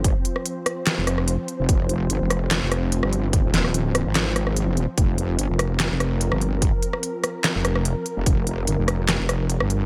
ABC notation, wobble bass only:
X:1
M:4/4
L:1/16
Q:1/4=146
K:Fm
V:1 name="Wobble bass" clef=bass
G,,, z8 F,,,4 z2 F,,, | F,,,4 G,,, F,,,4 F,,,4 G,,,3- | G,,, E,,,6 A,,,8 z | F,,,4 G,,, F,,,4 F,,,4 G,,,3- |
G,,, z8 F,,,4 z2 F,,, | F,,,4 G,,, F,,,4 F,,,4 G,,,3 |]